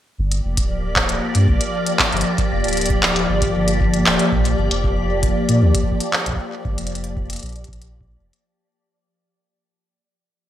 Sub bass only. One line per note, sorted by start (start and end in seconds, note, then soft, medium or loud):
0.18 0.40 G1 medium
0.44 0.55 F1 medium
0.57 1.19 D1 medium
1.35 1.49 G2 medium
1.48 1.59 A#1 medium
2.12 2.23 G1 medium
2.51 2.62 F1 medium
2.64 3.26 D1 medium
3.29 3.51 G1 medium
3.55 4.03 G1 loud
4.06 4.17 D1 medium
4.32 4.54 A#1 loud
4.58 4.69 G1 medium
4.71 5.32 F1 medium
5.49 5.63 A#2 medium
5.62 5.72 D2 medium
6.26 6.37 A#1 medium
6.65 6.76 G1 loud
6.78 7.39 F1 medium
7.43 7.64 A#1 medium
7.68 8.17 A#1 loud
8.20 8.31 F1 medium